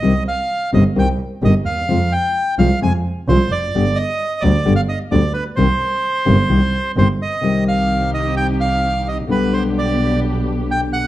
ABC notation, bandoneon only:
X:1
M:4/4
L:1/16
Q:1/4=130
K:Cm
V:1 name="Bandoneon"
e2 f4 e2 g2 z2 e2 f2- | f2 g4 f2 a2 z2 c2 d2- | d2 e4 d3 f e2 d2 =B2 | c12 c2 e2- |
e2 f4 e2 g2 f4 e2 | =B2 c2 d4 z4 g2 ^f2 |]